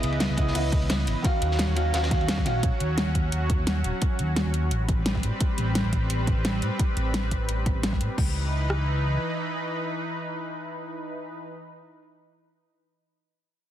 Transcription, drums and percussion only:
0.03 closed hi-hat, ride
0.12 ride
0.20 snare, closed hi-hat, ride
0.37 kick, closed hi-hat, ride
0.48 snare
0.55 closed hi-hat, open hi-hat
0.72 kick, closed hi-hat, ride
0.82 ride
0.89 snare, closed hi-hat, ride
1.00 ride
1.07 closed hi-hat, ride
1.24 kick, closed hi-hat, ride
1.42 closed hi-hat, ride
1.51 snare
1.59 snare, closed hi-hat, ride
1.76 closed hi-hat, ride
1.94 snare, closed hi-hat, ride
2.03 snare, ride
2.11 kick, closed hi-hat, ride
2.21 ride
2.28 snare, closed hi-hat, ride
2.38 kick, snare
2.46 closed hi-hat, ride
2.63 kick, closed hi-hat
2.80 closed hi-hat
2.98 snare, closed hi-hat
3.15 kick, closed hi-hat
3.32 closed hi-hat
3.50 kick, closed hi-hat
3.67 snare, closed hi-hat
3.84 closed hi-hat
4.02 kick, closed hi-hat
4.19 closed hi-hat
4.36 snare, closed hi-hat
4.54 closed hi-hat
4.71 closed hi-hat
4.89 kick, closed hi-hat
5.06 snare, closed hi-hat
5.15 kick, snare
5.23 closed hi-hat
5.41 kick, closed hi-hat
5.58 closed hi-hat
5.75 snare, closed hi-hat
5.93 kick, closed hi-hat
6.10 closed hi-hat
6.27 kick, closed hi-hat
6.45 snare, closed hi-hat
6.62 closed hi-hat
6.79 kick, closed hi-hat
6.97 closed hi-hat
7.14 snare, closed hi-hat
7.31 kick, closed hi-hat
7.49 closed hi-hat
7.66 kick, closed hi-hat
7.83 snare, closed hi-hat
7.93 kick, snare
8.01 closed hi-hat
8.18 kick, crash
8.70 cross-stick

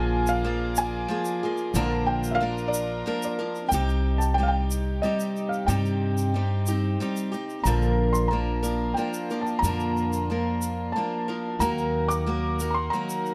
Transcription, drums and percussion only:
0.27 shaker
0.76 shaker
1.25 shaker
1.57 shaker
1.75 shaker
2.24 shaker
2.58 shaker
2.74 shaker
3.23 shaker
3.55 shaker
3.72 shaker
3.89 shaker
4.21 shaker
4.71 shaker
5.03 shaker
5.20 shaker
5.36 shaker
5.53 shaker
5.69 shaker
5.85 shaker
6.18 shaker
6.66 shaker
7.01 shaker
7.16 shaker
7.33 shaker
7.50 shaker
7.66 shaker
7.82 shaker
8.15 shaker
8.64 shaker
8.98 shaker
9.14 shaker
9.30 shaker
9.47 shaker
9.64 shaker
9.80 shaker
9.97 shaker
10.13 shaker
10.62 shaker
11.61 shaker
11.78 shaker
12.11 shaker
12.60 shaker
12.93 shaker
13.10 shaker
13.26 shaker

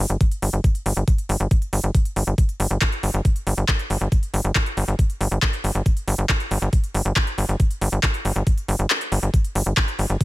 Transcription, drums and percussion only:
0.10 closed hi-hat
0.21 kick, closed hi-hat
0.32 closed hi-hat
0.42 open hi-hat
0.53 closed hi-hat
0.64 kick, closed hi-hat
0.75 closed hi-hat
0.86 open hi-hat
0.97 closed hi-hat
1.08 kick, closed hi-hat
1.18 closed hi-hat
1.29 open hi-hat
1.40 closed hi-hat
1.51 kick, closed hi-hat
1.62 closed hi-hat
1.73 open hi-hat
1.95 kick, closed hi-hat
2.05 closed hi-hat
2.16 open hi-hat
2.27 closed hi-hat
2.38 kick, closed hi-hat
2.49 closed hi-hat
2.60 open hi-hat
2.71 closed hi-hat
2.81 kick, clap, closed hi-hat
2.92 closed hi-hat
3.03 open hi-hat
3.14 closed hi-hat
3.25 kick, closed hi-hat
3.36 closed hi-hat
3.47 open hi-hat
3.58 closed hi-hat
3.68 kick, clap, closed hi-hat
3.79 closed hi-hat
3.90 open hi-hat
4.01 closed hi-hat
4.12 kick, closed hi-hat
4.23 closed hi-hat
4.34 open hi-hat
4.45 closed hi-hat
4.55 kick, clap, closed hi-hat
4.66 closed hi-hat
4.77 open hi-hat
4.88 closed hi-hat
4.99 kick, closed hi-hat
5.10 closed hi-hat
5.21 open hi-hat
5.32 closed hi-hat
5.42 kick, clap, closed hi-hat
5.53 closed hi-hat
5.64 open hi-hat
5.75 closed hi-hat
5.86 kick, closed hi-hat
5.97 closed hi-hat
6.08 open hi-hat
6.18 closed hi-hat
6.29 kick, clap, closed hi-hat
6.40 closed hi-hat
6.51 open hi-hat
6.62 closed hi-hat
6.73 kick, closed hi-hat
6.84 closed hi-hat
6.94 open hi-hat
7.05 closed hi-hat
7.16 kick, clap, closed hi-hat
7.27 closed hi-hat
7.38 open hi-hat
7.49 closed hi-hat
7.60 kick, closed hi-hat
7.71 closed hi-hat
7.81 open hi-hat
7.92 closed hi-hat
8.03 kick, clap, closed hi-hat
8.14 closed hi-hat
8.25 open hi-hat
8.36 closed hi-hat
8.47 kick, closed hi-hat
8.58 closed hi-hat
8.68 open hi-hat
8.79 closed hi-hat
8.90 clap, closed hi-hat
9.01 closed hi-hat
9.12 open hi-hat
9.23 closed hi-hat
9.34 kick, closed hi-hat
9.45 closed hi-hat
9.55 open hi-hat
9.77 kick, clap, closed hi-hat
9.88 closed hi-hat
9.99 open hi-hat
10.10 closed hi-hat
10.21 kick, closed hi-hat

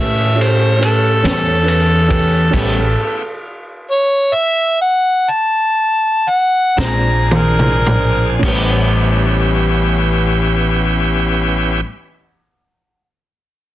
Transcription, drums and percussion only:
0.41 ride
0.82 ride
1.25 snare, ride
1.68 ride
2.10 kick, ride
2.53 kick, crash, ride
6.78 kick, snare
7.31 high tom
7.59 mid tom
7.87 mid tom
8.43 kick, crash

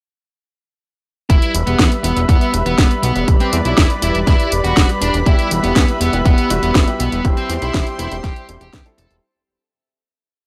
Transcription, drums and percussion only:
1.30 kick, closed hi-hat
1.42 closed hi-hat
1.55 closed hi-hat
1.67 closed hi-hat
1.79 kick, snare, closed hi-hat
1.92 closed hi-hat
2.04 closed hi-hat
2.17 closed hi-hat
2.29 kick, closed hi-hat
2.41 closed hi-hat
2.54 closed hi-hat
2.66 closed hi-hat
2.78 kick, snare, closed hi-hat
2.91 closed hi-hat
3.03 closed hi-hat
3.16 closed hi-hat
3.28 kick, closed hi-hat
3.40 closed hi-hat
3.53 closed hi-hat
3.65 closed hi-hat
3.78 kick, snare, closed hi-hat
3.90 closed hi-hat
4.02 closed hi-hat
4.15 closed hi-hat
4.27 kick, snare, closed hi-hat
4.40 closed hi-hat
4.52 closed hi-hat
4.64 closed hi-hat
4.77 kick, snare, closed hi-hat
4.89 closed hi-hat
5.02 closed hi-hat
5.14 closed hi-hat
5.26 kick, closed hi-hat
5.39 closed hi-hat
5.51 closed hi-hat
5.64 closed hi-hat
5.76 kick, snare, closed hi-hat
5.88 closed hi-hat
6.01 closed hi-hat
6.13 closed hi-hat
6.26 kick, closed hi-hat
6.38 closed hi-hat
6.50 closed hi-hat
6.63 closed hi-hat
6.75 kick, snare, closed hi-hat
6.88 closed hi-hat
7.00 closed hi-hat
7.12 closed hi-hat
7.25 kick, closed hi-hat
7.37 closed hi-hat
7.50 closed hi-hat
7.62 closed hi-hat
7.74 kick, snare, closed hi-hat
7.87 closed hi-hat
7.99 closed hi-hat
8.12 closed hi-hat
8.24 kick, snare, closed hi-hat
8.36 closed hi-hat
8.49 closed hi-hat
8.61 closed hi-hat
8.73 kick, snare, closed hi-hat
8.86 closed hi-hat
8.98 closed hi-hat
9.11 closed hi-hat

